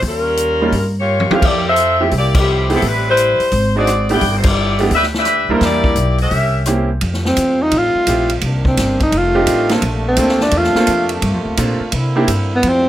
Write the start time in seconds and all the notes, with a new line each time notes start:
0.02 D#2, kick, open hi-hat
0.07 G3 C#4 F4 A#4
0.37 closed hi-hat
0.62 G3 A#3 C#4 D#4 F4
0.72 G2, kick, open hi-hat
0.99 A#3 F4 G4 C#5
1.20 high tom
1.30 F3 A3 C4 C#4 E4 G4 A#4 F5, muted upright bass stroke, high tom
1.42 F2 A#3, kick, crash
1.46 E4 G4 D5
1.68 C4 F4 A4 E5
1.76 closed hi-hat
2.00 F3 A3 C4 E4 G4
2.11 C2, kick, open hi-hat
2.17 A#3 E4 G4 D5
2.35 kick, crash
2.39 F3 C4 E4 G4
2.70 A3 B3 C4 E4 G4, open hi-hat
2.75 F3 C4 E4 A4
2.82 A1, kick, open hi-hat
2.86 G3 C4 E4 B4
3.09 G3 E4 B4 C5
3.17 closed hi-hat
3.39 muted upright bass stroke, open hi-hat
3.52 G#1, kick, open hi-hat
3.76 G#3 C4 D4 D#4 F#4 G#4 D5
3.87 cross-stick, closed hi-hat
4.09 A3 B3 D4 E4 G4, open hi-hat
4.14 E4 B4 D5 G5
4.21 G1, kick, open hi-hat
4.37 C5
4.43 kick, crash
4.48 B3 E4 G4 D5
4.79 A3 B3 D4 E4 G4, open hi-hat
4.91 D2, kick, open hi-hat
4.95 D4 G4 B4 E5
5.03 snare
5.14 D4, snare
5.18 G4 B4 E5
5.25 cross-stick, closed hi-hat
5.49 D2 G3 A3 A#3 D4 E4 A#4 C5
5.53 F4
5.61 E2 E4 G4 D5, kick, snare, open hi-hat
5.65 A#3
5.84 kick
5.95 B1, closed hi-hat
6.18 C#4 G4 A#4 E5, open hi-hat
6.31 C2, kick, open hi-hat
6.66 A#3 C4 C#4 E4 G4, cross-stick, closed hi-hat
7.01 F2 C3 G3 A3 F4, kick, ride
7.14 snare
7.25 C4, snare
7.37 E2, kick, hi-hat pedal, ride
7.63 D#4
7.71 A1, kick, ride
7.78 F4
7.95 muted upright bass stroke
8.07 A#1 A3 C4 E4 F4 G4, kick, hi-hat pedal, ride
8.29 ride
8.41 C2 C3 D#3 A#3 D4, kick, ride
8.65 C4, kick
8.77 G1, kick, snare, hi-hat pedal, ride
9.00 D#4, kick, ride
9.12 F1 D#3 G3 A3, kick, ride
9.17 F4
9.35 A3 C4 D4 D#4 G4
9.47 A1, kick, hi-hat pedal, ride
9.69 A#3 C4 D4 F4 A4, snare, ride
9.82 A#1 C3 A#3 D4, kick, ride
10.08 C4
10.16 D2 A#3 C4 D4 F4 A4, kick, hi-hat pedal, ride
10.29 snare
10.40 D4, snare
10.51 E2, kick, ride
10.57 F4
10.64 snare
10.74 A#3 C4 D4 F4 A4, muted upright bass stroke, snare
10.87 F2, kick, hi-hat pedal, ride
11.09 ride
11.22 G2 F4, kick, ride
11.34 F2
11.45 D2
11.57 A#2 A#3 C4 D4 F4 A4, kick, hi-hat pedal, ride
11.80 muted upright bass stroke
11.92 C3 D3 A#3 C4 E4, kick, ride
12.16 A#3 C4 D4 E4 G4
12.27 G2, kick, hi-hat pedal, ride
12.56 B3
12.62 F2 G3 A3 E4 F4, kick, ride
12.68 C4